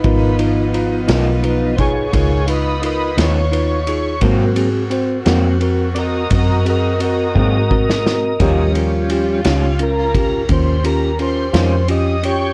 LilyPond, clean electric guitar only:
\new Staff \with { instrumentName = "Clean electric guitar" } { \clef bass \time 12/8 \key aes \mixolydian \tempo 4. = 57 r4. <des f ces' ees'>8 r2 r8 <des f ces' ees'>8 r4 | <aes, ges bes c'>8 r4 <aes, ges bes c'>8 r2 r8 <aes, ges bes c'>8 r4 | <ees g des' f'>8 r4 <ees g des' f'>8 r2 r8 <ees g des' f'>8 r4 | }